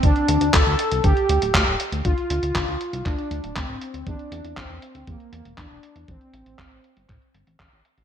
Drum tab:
HH |xxxxxxxxxxxxxxxx|xxxxxxxxxxxxxxxx|xxxxxxxxxxxxxxxx|xxxxxxxxxxxxxxxx|
CP |----x-------x---|----x---x---x---|----x-------x---|----x---x---x---|
BD |o---o---o---o---|o---o---o---o---|o---o---o---o---|o---o---o---o---|